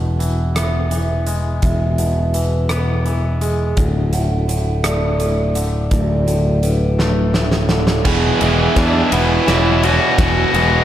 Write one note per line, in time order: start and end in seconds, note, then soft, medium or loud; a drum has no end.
0.00 1.59 E1 soft
0.00 1.27 E2 soft
0.00 1.63 B2 soft
0.00 0.56 F#5 soft
0.19 0.90 E3 soft
0.19 closed hi-hat soft
0.55 2.35 B3 soft
0.55 1.27 E5 medium
0.55 cross-stick medium
0.55 closed hi-hat medium
0.91 2.33 E3 soft
0.91 closed hi-hat soft
1.27 3.06 G#3 soft
1.27 closed hi-hat soft
1.62 3.74 E1 medium
1.62 3.42 E2 soft
1.62 2.35 E5 medium
1.62 kick medium
1.62 closed hi-hat medium
1.98 3.78 B2 soft
1.98 closed hi-hat soft
2.34 3.04 E3 soft
2.34 3.06 B4 soft
2.34 closed hi-hat soft
2.69 3.77 B3 soft
2.69 cross-stick medium
2.69 closed hi-hat medium
3.06 3.77 E3 soft
3.06 closed hi-hat soft
3.41 3.77 G#3 soft
3.41 3.77 G#4 medium
3.41 closed hi-hat soft
3.77 5.88 D1 soft
3.77 5.56 D2 soft
3.77 kick medium
3.77 closed hi-hat medium
4.13 4.47 A2 soft
4.13 4.85 F#5 medium
4.13 closed hi-hat soft
4.49 5.19 A2 soft
4.49 closed hi-hat soft
4.84 6.63 A3 soft
4.84 5.56 D5 medium
4.84 cross-stick medium
4.84 closed hi-hat medium
5.20 6.26 A2 soft
5.20 closed hi-hat soft
5.55 7.34 D3 medium
5.55 closed hi-hat soft
5.91 8.01 D1 soft
5.91 7.70 D2 medium
5.91 6.63 D5 medium
5.91 kick medium
5.91 closed hi-hat medium
6.27 6.62 A2 soft
6.27 closed hi-hat soft
6.62 7.33 A2 soft
6.62 7.34 B4 soft
6.62 closed hi-hat soft
6.99 8.05 A3 medium
6.99 snare soft
7.34 8.05 A2 soft
7.34 snare soft
7.51 snare soft
7.69 8.05 D3 soft
7.69 8.06 A4 medium
7.69 snare medium
7.87 snare medium
8.03 8.30 E1 medium
8.03 9.83 E2 medium
8.03 8.40 E2 medium
8.03 8.40 B2 medium
8.03 8.41 E3 medium
8.03 10.84 F#4 medium
8.03 8.77 G#4 medium
8.03 10.84 B4 medium
8.03 10.15 E5 medium
8.03 10.84 G#5 medium
8.03 kick medium
8.03 snare soft
8.03 crash medium
8.41 8.67 E1 medium
8.41 8.77 E2 medium
8.41 8.77 B2 medium
8.41 8.78 E3 medium
8.41 10.18 G#3 medium
8.41 8.78 B3 medium
8.41 ride medium
8.76 9.02 E2 medium
8.76 9.11 E2 medium
8.76 9.11 B2 medium
8.76 9.12 E3 medium
8.76 9.15 D4 medium
8.76 9.46 E4 medium
8.76 kick medium
8.76 snare soft
8.76 ride medium
9.12 9.37 E1 medium
9.12 9.46 E2 medium
9.12 9.46 B2 medium
9.12 9.47 E3 medium
9.12 9.82 B3 medium
9.12 9.85 E4 medium
9.12 9.47 B4 medium
9.12 ride medium
9.47 9.98 E1 medium
9.47 9.82 E2 medium
9.47 9.82 B2 medium
9.47 9.83 E3 medium
9.47 10.84 E4 medium
9.47 10.18 C#5 medium
9.47 snare soft
9.47 ride medium
9.83 10.17 E2 medium
9.83 10.18 B2 medium
9.83 10.18 E3 medium
9.83 10.84 B3 medium
9.83 10.19 F#4 medium
9.83 ride medium
10.18 10.43 E1 medium
10.18 10.52 E2 medium
10.18 10.84 E2 medium
10.18 10.53 B2 medium
10.18 10.53 E3 medium
10.18 10.84 D4 medium
10.18 10.84 F#4 medium
10.18 kick medium
10.18 snare soft
10.18 ride medium
10.54 10.79 E1 medium
10.54 10.84 E2 medium
10.54 10.84 B2 medium
10.54 10.84 E3 medium
10.54 10.84 G#3 medium
10.54 ride medium